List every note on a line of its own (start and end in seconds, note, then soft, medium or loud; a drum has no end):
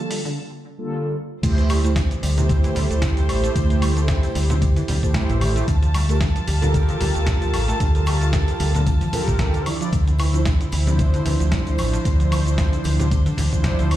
0.00 0.21 D3 medium
0.00 0.33 D3 medium
0.00 0.22 G3 medium
0.00 0.22 A#3 medium
0.00 0.34 A#3 medium
0.00 0.22 F4 medium
0.00 0.22 A4 medium
0.00 0.33 A4 medium
0.00 0.34 F5 medium
0.00 0.36 A5 medium
0.10 0.20 G3 medium
0.10 open hi-hat loud
0.10 cabasa medium
0.25 0.32 D3 medium
0.25 0.30 D3 loud
0.25 0.32 G3 medium
0.25 0.32 A#3 medium
0.25 0.32 F4 medium
0.25 0.32 A4 medium
0.25 cabasa soft
0.78 1.15 D3 medium
0.78 1.15 G3 medium
0.78 1.15 A#3 medium
0.78 1.16 F4 medium
0.78 1.16 A4 loud
1.43 2.02 D2 medium
1.43 1.53 C3 medium
1.43 1.78 A3 loud
1.43 5.64 A3 medium
1.43 1.79 E4 medium
1.43 5.64 G4 medium
1.43 1.79 G4 medium
1.43 5.64 C5 medium
1.43 1.79 C5 loud
1.43 kick loud
1.43 closed hi-hat loud
1.43 tambourine medium
1.43 crash loud
1.43 cabasa medium
1.58 1.66 E3 medium
1.58 closed hi-hat soft
1.58 cabasa soft
1.69 1.84 G3 loud
1.69 open hi-hat loud
1.69 tambourine medium
1.69 high woodblock medium
1.84 1.91 A3 loud
1.84 1.96 A3 medium
1.84 1.91 E4 medium
1.84 1.91 G4 medium
1.84 1.91 C5 loud
1.84 closed hi-hat soft
1.84 tambourine soft
1.84 cabasa medium
1.96 2.06 C3 medium
1.96 kick loud
1.96 snare loud
1.96 closed hi-hat medium
1.96 tambourine soft
1.96 cabasa medium
2.11 2.16 E3 medium
2.11 closed hi-hat soft
2.11 cabasa soft
2.23 2.69 D2 medium
2.23 2.33 G3 medium
2.23 open hi-hat medium
2.23 tambourine loud
2.36 2.42 C3 loud
2.36 3.93 A3 medium
2.36 3.93 E4 medium
2.36 3.93 G4 medium
2.36 3.94 C5 loud
2.36 closed hi-hat soft
2.36 tambourine soft
2.36 low conga loud
2.36 cabasa medium
2.49 2.59 C3 medium
2.49 kick loud
2.49 closed hi-hat medium
2.49 tambourine medium
2.49 cabasa medium
2.64 2.69 E3 loud
2.64 closed hi-hat soft
2.64 tambourine soft
2.64 high conga medium
2.64 cabasa soft
2.75 2.85 D2 medium
2.75 2.90 G3 loud
2.75 open hi-hat loud
2.75 tambourine medium
2.75 low conga medium
2.90 3.29 D2 medium
2.90 3.02 A3 medium
2.90 closed hi-hat soft
2.90 tambourine soft
2.90 cabasa medium
3.02 3.08 C3 loud
3.02 kick loud
3.02 snare loud
3.02 closed hi-hat medium
3.02 tambourine medium
3.02 cabasa medium
3.17 3.25 E3 medium
3.17 closed hi-hat soft
3.17 tambourine soft
3.17 cabasa soft
3.29 3.47 A1 loud
3.29 3.39 G3 medium
3.29 open hi-hat medium
3.29 tambourine medium
3.29 high woodblock medium
3.44 3.49 A3 loud
3.44 closed hi-hat soft
3.44 tambourine soft
3.44 cabasa medium
3.56 4.15 D2 loud
3.56 3.66 C3 medium
3.56 kick loud
3.56 closed hi-hat medium
3.56 tambourine medium
3.56 cabasa medium
3.70 3.78 E3 medium
3.70 closed hi-hat soft
3.70 cabasa soft
3.82 3.96 G3 loud
3.82 open hi-hat loud
3.82 tambourine medium
3.82 high woodblock medium
3.96 4.46 A3 medium
3.96 4.08 A3 medium
3.96 4.46 E4 medium
3.96 4.47 G4 medium
3.96 4.47 C5 medium
3.96 closed hi-hat soft
3.96 tambourine soft
3.96 cabasa medium
4.08 4.19 C3 medium
4.08 kick loud
4.08 snare loud
4.08 closed hi-hat medium
4.08 tambourine medium
4.08 cabasa medium
4.23 4.28 E3 medium
4.23 closed hi-hat soft
4.23 tambourine soft
4.23 cabasa soft
4.35 4.81 D2 medium
4.35 4.45 G3 medium
4.35 open hi-hat loud
4.35 tambourine medium
4.49 4.55 C3 loud
4.49 4.56 A3 medium
4.49 4.57 E4 medium
4.49 4.57 G4 medium
4.49 4.57 C5 medium
4.49 closed hi-hat soft
4.49 tambourine soft
4.49 low conga loud
4.49 cabasa medium
4.62 4.72 C3 medium
4.62 kick loud
4.62 closed hi-hat medium
4.62 tambourine medium
4.62 cabasa medium
4.76 4.81 E3 loud
4.76 closed hi-hat soft
4.76 tambourine soft
4.76 high conga medium
4.76 cabasa soft
4.88 4.98 D2 medium
4.88 5.02 G3 loud
4.88 open hi-hat loud
4.88 tambourine medium
4.88 low conga medium
5.02 5.10 D2 medium
5.02 5.66 A3 loud
5.02 5.14 A3 medium
5.02 5.66 E4 medium
5.02 5.67 G4 medium
5.02 5.67 C5 loud
5.02 kick medium
5.02 closed hi-hat soft
5.02 tambourine soft
5.02 cabasa medium
5.14 5.21 C3 loud
5.14 kick loud
5.14 snare loud
5.14 closed hi-hat medium
5.14 tambourine medium
5.14 cabasa medium
5.29 5.61 A1 medium
5.29 5.38 E3 medium
5.29 closed hi-hat soft
5.29 tambourine soft
5.29 cabasa soft
5.41 5.51 G3 medium
5.41 open hi-hat medium
5.41 tambourine medium
5.41 high conga medium
5.41 high woodblock medium
5.55 5.61 A3 loud
5.55 closed hi-hat soft
5.55 tambourine soft
5.55 cabasa medium
5.68 6.27 D2 loud
5.68 5.78 D3 medium
5.68 9.62 F4 medium
5.68 9.62 A5 medium
5.68 kick loud
5.68 closed hi-hat medium
5.68 tambourine medium
5.68 cabasa medium
5.82 5.91 F3 medium
5.82 closed hi-hat soft
5.82 cabasa soft
5.94 6.08 G3 loud
5.94 open hi-hat loud
5.94 tambourine medium
5.94 high woodblock medium
6.09 6.16 A3 loud
6.09 6.21 A3 medium
6.09 6.16 F4 medium
6.09 6.16 G4 medium
6.09 6.16 A#4 loud
6.09 closed hi-hat soft
6.09 tambourine soft
6.09 cabasa medium
6.20 6.31 D3 medium
6.20 kick loud
6.20 snare loud
6.20 closed hi-hat medium
6.20 tambourine medium
6.20 cabasa medium
6.35 6.41 F3 medium
6.35 closed hi-hat soft
6.35 cabasa soft
6.47 6.94 D2 medium
6.47 6.58 G3 medium
6.47 open hi-hat loud
6.47 tambourine medium
6.61 6.67 D3 loud
6.61 8.18 F4 medium
6.61 8.18 G4 medium
6.61 8.18 A4 medium
6.61 8.19 A#4 loud
6.61 closed hi-hat soft
6.61 tambourine soft
6.61 low conga loud
6.61 cabasa medium
6.74 6.84 D3 medium
6.74 kick loud
6.74 closed hi-hat medium
6.74 tambourine medium
6.74 cabasa medium
6.88 6.93 F3 loud
6.88 closed hi-hat soft
6.88 tambourine soft
6.88 high conga medium
6.88 cabasa soft
7.00 7.10 D2 medium
7.00 7.15 G3 loud
7.00 open hi-hat loud
7.00 tambourine medium
7.00 low conga loud
7.15 7.54 D2 medium
7.15 7.27 A3 medium
7.15 closed hi-hat soft
7.15 tambourine soft
7.15 cabasa medium
7.27 7.33 D3 loud
7.27 kick loud
7.27 snare loud
7.27 closed hi-hat medium
7.27 tambourine soft
7.27 cabasa medium
7.41 7.50 F3 medium
7.41 closed hi-hat soft
7.41 tambourine soft
7.41 cabasa soft
7.54 7.71 A1 medium
7.54 7.64 G3 medium
7.54 open hi-hat loud
7.54 tambourine medium
7.54 high woodblock medium
7.68 7.73 A3 loud
7.68 closed hi-hat soft
7.68 tambourine soft
7.68 cabasa medium
7.80 8.39 D2 loud
7.80 7.90 D3 medium
7.80 kick loud
7.80 closed hi-hat medium
7.80 tambourine soft
7.80 cabasa medium
7.95 8.03 F3 medium
7.95 closed hi-hat soft
7.95 cabasa soft
8.06 8.21 G3 loud
8.06 open hi-hat loud
8.06 tambourine medium
8.06 high woodblock medium
8.21 8.33 A3 medium
8.21 8.71 F4 medium
8.21 8.71 G4 medium
8.21 8.71 A4 medium
8.21 8.72 A#4 medium
8.21 closed hi-hat soft
8.21 tambourine soft
8.21 cabasa medium
8.33 8.43 D3 medium
8.33 kick loud
8.33 snare loud
8.33 closed hi-hat medium
8.33 tambourine soft
8.33 cabasa medium
8.47 8.53 F3 medium
8.47 closed hi-hat soft
8.47 tambourine soft
8.47 cabasa soft
8.60 9.06 D2 medium
8.60 8.70 G3 medium
8.60 open hi-hat loud
8.60 tambourine medium
8.74 8.80 D3 loud
8.74 8.81 A3 medium
8.74 8.81 F4 medium
8.74 8.81 G4 medium
8.74 8.82 A#4 medium
8.74 closed hi-hat soft
8.74 tambourine soft
8.74 low conga medium
8.74 cabasa medium
8.86 8.97 D3 medium
8.86 kick loud
8.86 closed hi-hat medium
8.86 tambourine medium
8.86 cabasa medium
9.01 9.06 F3 loud
9.01 closed hi-hat soft
9.01 tambourine soft
9.01 high conga medium
9.01 cabasa soft
9.13 9.23 F3 medium
9.13 9.63 F4 medium
9.13 9.64 G4 medium
9.13 9.63 A4 loud
9.13 9.64 A#4 loud
9.13 open hi-hat loud
9.13 tambourine medium
9.13 low conga medium
9.27 9.35 A1 medium
9.27 9.36 A3 medium
9.27 kick medium
9.27 closed hi-hat soft
9.27 tambourine soft
9.27 cabasa medium
9.39 9.50 D3 medium
9.39 kick loud
9.39 snare loud
9.39 closed hi-hat medium
9.39 tambourine soft
9.39 cabasa medium
9.54 9.66 D3 medium
9.54 closed hi-hat soft
9.54 tambourine soft
9.54 cabasa soft
9.66 9.77 F3 medium
9.66 9.80 F3 medium
9.66 13.87 F3 medium
9.66 9.77 D4 medium
9.66 9.77 E4 medium
9.66 11.77 E4 medium
9.66 13.97 C5 medium
9.66 9.78 D5 medium
9.66 open hi-hat loud
9.66 tambourine medium
9.66 high conga medium
9.66 high woodblock medium
9.81 9.87 F3 loud
9.81 9.86 F3 medium
9.81 9.88 D4 medium
9.81 9.88 E4 medium
9.81 9.88 D5 loud
9.81 closed hi-hat soft
9.81 tambourine soft
9.81 cabasa medium
9.92 10.52 D2 loud
9.92 10.03 C3 medium
9.92 kick loud
9.92 closed hi-hat medium
9.92 tambourine medium
9.92 cabasa medium
10.07 10.16 D3 medium
10.07 closed hi-hat soft
10.07 cabasa soft
10.18 10.33 E3 loud
10.18 open hi-hat loud
10.18 tambourine medium
10.18 high woodblock medium
10.33 10.40 F3 loud
10.33 10.45 F3 medium
10.33 10.40 D4 medium
10.33 10.41 E4 medium
10.33 10.41 C5 loud
10.33 closed hi-hat soft
10.33 tambourine soft
10.33 cabasa medium
10.45 10.56 C3 medium
10.45 kick loud
10.45 snare loud
10.45 closed hi-hat medium
10.45 tambourine medium
10.45 cabasa medium
10.61 10.65 D3 medium
10.61 closed hi-hat soft
10.61 cabasa soft
10.72 11.18 D2 medium
10.72 10.83 E3 medium
10.72 open hi-hat loud
10.72 tambourine medium
10.86 10.92 C3 loud
10.86 12.42 F3 medium
10.86 12.43 D4 medium
10.86 12.43 E4 medium
10.86 12.43 C5 loud
10.86 closed hi-hat soft
10.86 tambourine soft
10.86 low conga medium
10.86 cabasa medium
10.99 11.09 C3 medium
10.99 kick loud
10.99 closed hi-hat medium
10.99 tambourine soft
10.99 cabasa medium
11.14 11.19 D3 loud
11.14 closed hi-hat soft
11.14 tambourine soft
11.14 high conga medium
11.14 cabasa soft
11.26 11.35 D2 medium
11.26 11.39 E3 loud
11.26 open hi-hat loud
11.26 tambourine medium
11.26 low conga medium
11.40 11.79 D2 medium
11.40 11.52 F3 medium
11.40 closed hi-hat soft
11.40 tambourine soft
11.40 cabasa medium
11.52 11.58 C3 loud
11.52 kick loud
11.52 snare loud
11.52 closed hi-hat medium
11.52 tambourine soft
11.52 cabasa medium
11.66 11.75 D3 medium
11.66 closed hi-hat soft
11.66 tambourine soft
11.66 cabasa soft
11.78 11.96 A1 loud
11.78 11.89 E3 medium
11.78 13.97 D4 medium
11.78 open hi-hat medium
11.78 tambourine loud
11.78 high woodblock medium
11.93 11.98 F3 loud
11.93 closed hi-hat soft
11.93 tambourine soft
11.93 cabasa medium
12.05 12.64 D2 loud
12.05 12.15 C3 medium
12.05 kick loud
12.05 closed hi-hat medium
12.05 tambourine soft
12.05 cabasa medium
12.20 12.28 D3 medium
12.20 closed hi-hat soft
12.20 cabasa soft
12.32 12.46 E3 loud
12.32 open hi-hat loud
12.32 tambourine medium
12.32 high woodblock medium
12.46 12.96 F3 medium
12.46 12.58 F3 medium
12.46 12.96 D4 medium
12.46 12.96 E4 medium
12.46 12.96 C5 medium
12.46 closed hi-hat soft
12.46 tambourine soft
12.46 cabasa medium
12.58 12.68 C3 medium
12.58 kick loud
12.58 snare loud
12.58 closed hi-hat medium
12.58 tambourine medium
12.58 cabasa medium
12.72 12.78 D3 medium
12.72 closed hi-hat soft
12.72 tambourine soft
12.72 cabasa soft
12.84 13.31 D2 medium
12.84 12.95 E3 medium
12.84 open hi-hat medium
12.84 tambourine medium
12.99 13.04 C3 loud
12.99 13.06 F3 medium
12.99 13.06 D4 medium
12.99 13.06 E4 medium
12.99 13.07 C5 medium
12.99 closed hi-hat soft
12.99 tambourine soft
12.99 low conga loud
12.99 cabasa medium
13.11 13.21 C3 medium
13.11 kick loud
13.11 closed hi-hat medium
13.11 tambourine medium
13.11 cabasa medium
13.26 13.31 D3 loud
13.26 closed hi-hat soft
13.26 tambourine soft
13.26 high conga medium
13.26 cabasa soft
13.37 13.47 D2 medium
13.37 13.52 E3 loud
13.37 open hi-hat loud
13.37 tambourine loud
13.37 low conga medium
13.52 13.60 D2 loud
13.52 13.89 F3 loud
13.52 13.64 F3 medium
13.52 13.90 D4 medium
13.52 13.90 E4 medium
13.52 13.90 C5 loud
13.52 kick medium
13.52 closed hi-hat soft
13.52 tambourine soft
13.52 cabasa medium
13.64 13.70 C3 loud
13.64 kick loud
13.64 snare loud
13.64 closed hi-hat medium
13.64 tambourine medium
13.64 cabasa medium
13.79 13.97 D2 medium
13.79 13.87 D3 medium
13.79 closed hi-hat soft
13.79 tambourine soft
13.79 cabasa soft
13.91 13.97 E3 medium
13.91 13.97 A3 medium
13.91 13.97 E4 medium
13.91 open hi-hat medium
13.91 tambourine medium
13.91 high conga medium
13.91 high woodblock medium